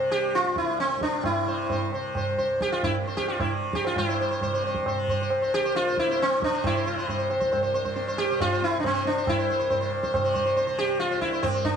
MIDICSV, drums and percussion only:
0, 0, Header, 1, 2, 480
1, 0, Start_track
1, 0, Tempo, 455581
1, 1315, Time_signature, 3, 2, 24, 8
1, 3227, Tempo, 447427
1, 6587, Tempo, 435730
1, 12722, End_track
2, 0, Start_track
2, 0, Title_t, "Tabla"
2, 345, Note_on_c, 9, 62, 66
2, 450, Note_off_c, 9, 62, 0
2, 468, Note_on_c, 9, 62, 51
2, 573, Note_off_c, 9, 62, 0
2, 590, Note_on_c, 9, 37, 59
2, 696, Note_off_c, 9, 37, 0
2, 709, Note_on_c, 9, 62, 66
2, 815, Note_off_c, 9, 62, 0
2, 828, Note_on_c, 9, 62, 76
2, 933, Note_off_c, 9, 62, 0
2, 948, Note_on_c, 9, 62, 54
2, 1053, Note_off_c, 9, 62, 0
2, 1067, Note_on_c, 9, 37, 58
2, 1173, Note_off_c, 9, 37, 0
2, 1190, Note_on_c, 9, 62, 56
2, 1295, Note_off_c, 9, 62, 0
2, 1304, Note_on_c, 9, 60, 101
2, 1304, Note_on_c, 9, 64, 91
2, 1409, Note_off_c, 9, 60, 0
2, 1409, Note_off_c, 9, 64, 0
2, 1787, Note_on_c, 9, 63, 74
2, 1787, Note_on_c, 9, 64, 59
2, 1892, Note_off_c, 9, 63, 0
2, 1892, Note_off_c, 9, 64, 0
2, 2025, Note_on_c, 9, 60, 48
2, 2130, Note_off_c, 9, 60, 0
2, 2265, Note_on_c, 9, 60, 77
2, 2265, Note_on_c, 9, 64, 61
2, 2371, Note_off_c, 9, 60, 0
2, 2371, Note_off_c, 9, 64, 0
2, 2507, Note_on_c, 9, 64, 52
2, 2613, Note_off_c, 9, 64, 0
2, 2747, Note_on_c, 9, 37, 83
2, 2852, Note_off_c, 9, 37, 0
2, 2871, Note_on_c, 9, 60, 71
2, 2976, Note_off_c, 9, 60, 0
2, 2985, Note_on_c, 9, 60, 86
2, 2985, Note_on_c, 9, 64, 77
2, 3090, Note_off_c, 9, 60, 0
2, 3090, Note_off_c, 9, 64, 0
2, 3345, Note_on_c, 9, 37, 68
2, 3452, Note_off_c, 9, 37, 0
2, 3461, Note_on_c, 9, 60, 66
2, 3568, Note_off_c, 9, 60, 0
2, 3585, Note_on_c, 9, 60, 85
2, 3585, Note_on_c, 9, 64, 93
2, 3692, Note_off_c, 9, 60, 0
2, 3692, Note_off_c, 9, 64, 0
2, 3947, Note_on_c, 9, 37, 80
2, 4054, Note_off_c, 9, 37, 0
2, 4068, Note_on_c, 9, 60, 74
2, 4175, Note_off_c, 9, 60, 0
2, 4191, Note_on_c, 9, 60, 117
2, 4191, Note_on_c, 9, 64, 109
2, 4298, Note_off_c, 9, 60, 0
2, 4298, Note_off_c, 9, 64, 0
2, 4676, Note_on_c, 9, 63, 81
2, 4676, Note_on_c, 9, 64, 75
2, 4783, Note_off_c, 9, 63, 0
2, 4783, Note_off_c, 9, 64, 0
2, 4916, Note_on_c, 9, 60, 61
2, 5023, Note_off_c, 9, 60, 0
2, 5033, Note_on_c, 9, 37, 63
2, 5141, Note_off_c, 9, 37, 0
2, 5156, Note_on_c, 9, 60, 83
2, 5156, Note_on_c, 9, 64, 71
2, 5263, Note_off_c, 9, 60, 0
2, 5263, Note_off_c, 9, 64, 0
2, 5394, Note_on_c, 9, 64, 62
2, 5501, Note_off_c, 9, 64, 0
2, 5631, Note_on_c, 9, 60, 75
2, 5738, Note_off_c, 9, 60, 0
2, 6111, Note_on_c, 9, 62, 91
2, 6219, Note_off_c, 9, 62, 0
2, 6233, Note_on_c, 9, 62, 70
2, 6340, Note_off_c, 9, 62, 0
2, 6350, Note_on_c, 9, 37, 52
2, 6457, Note_off_c, 9, 37, 0
2, 6468, Note_on_c, 9, 62, 70
2, 6575, Note_off_c, 9, 62, 0
2, 6592, Note_on_c, 9, 62, 82
2, 6703, Note_off_c, 9, 62, 0
2, 6717, Note_on_c, 9, 62, 64
2, 6827, Note_off_c, 9, 62, 0
2, 6838, Note_on_c, 9, 37, 68
2, 6948, Note_off_c, 9, 37, 0
2, 6959, Note_on_c, 9, 62, 61
2, 7069, Note_off_c, 9, 62, 0
2, 7078, Note_on_c, 9, 60, 108
2, 7078, Note_on_c, 9, 64, 94
2, 7188, Note_off_c, 9, 60, 0
2, 7188, Note_off_c, 9, 64, 0
2, 7569, Note_on_c, 9, 63, 82
2, 7569, Note_on_c, 9, 64, 74
2, 7679, Note_off_c, 9, 63, 0
2, 7679, Note_off_c, 9, 64, 0
2, 7811, Note_on_c, 9, 60, 64
2, 7921, Note_off_c, 9, 60, 0
2, 7931, Note_on_c, 9, 37, 71
2, 8042, Note_off_c, 9, 37, 0
2, 8057, Note_on_c, 9, 60, 81
2, 8057, Note_on_c, 9, 64, 77
2, 8167, Note_off_c, 9, 60, 0
2, 8167, Note_off_c, 9, 64, 0
2, 8298, Note_on_c, 9, 62, 71
2, 8408, Note_off_c, 9, 62, 0
2, 8417, Note_on_c, 9, 64, 53
2, 8527, Note_off_c, 9, 64, 0
2, 8536, Note_on_c, 9, 62, 83
2, 8646, Note_off_c, 9, 62, 0
2, 8777, Note_on_c, 9, 62, 70
2, 8887, Note_off_c, 9, 62, 0
2, 9021, Note_on_c, 9, 60, 85
2, 9021, Note_on_c, 9, 64, 74
2, 9131, Note_off_c, 9, 60, 0
2, 9131, Note_off_c, 9, 64, 0
2, 9261, Note_on_c, 9, 62, 61
2, 9371, Note_off_c, 9, 62, 0
2, 9501, Note_on_c, 9, 60, 81
2, 9501, Note_on_c, 9, 64, 70
2, 9611, Note_off_c, 9, 60, 0
2, 9611, Note_off_c, 9, 64, 0
2, 9739, Note_on_c, 9, 62, 67
2, 9849, Note_off_c, 9, 62, 0
2, 9977, Note_on_c, 9, 60, 110
2, 9977, Note_on_c, 9, 64, 93
2, 10087, Note_off_c, 9, 60, 0
2, 10087, Note_off_c, 9, 64, 0
2, 10454, Note_on_c, 9, 63, 85
2, 10454, Note_on_c, 9, 64, 72
2, 10564, Note_off_c, 9, 63, 0
2, 10564, Note_off_c, 9, 64, 0
2, 10695, Note_on_c, 9, 60, 53
2, 10805, Note_off_c, 9, 60, 0
2, 10816, Note_on_c, 9, 37, 69
2, 10926, Note_off_c, 9, 37, 0
2, 10932, Note_on_c, 9, 60, 96
2, 10932, Note_on_c, 9, 64, 73
2, 11042, Note_off_c, 9, 60, 0
2, 11042, Note_off_c, 9, 64, 0
2, 11173, Note_on_c, 9, 64, 57
2, 11283, Note_off_c, 9, 64, 0
2, 11411, Note_on_c, 9, 62, 82
2, 11522, Note_off_c, 9, 62, 0
2, 11644, Note_on_c, 9, 62, 66
2, 11754, Note_off_c, 9, 62, 0
2, 11880, Note_on_c, 9, 62, 77
2, 11990, Note_off_c, 9, 62, 0
2, 12000, Note_on_c, 9, 62, 61
2, 12110, Note_off_c, 9, 62, 0
2, 12119, Note_on_c, 9, 37, 59
2, 12229, Note_off_c, 9, 37, 0
2, 12237, Note_on_c, 9, 62, 67
2, 12347, Note_off_c, 9, 62, 0
2, 12357, Note_on_c, 9, 60, 88
2, 12357, Note_on_c, 9, 64, 76
2, 12467, Note_off_c, 9, 60, 0
2, 12467, Note_off_c, 9, 64, 0
2, 12592, Note_on_c, 9, 64, 59
2, 12702, Note_off_c, 9, 64, 0
2, 12722, End_track
0, 0, End_of_file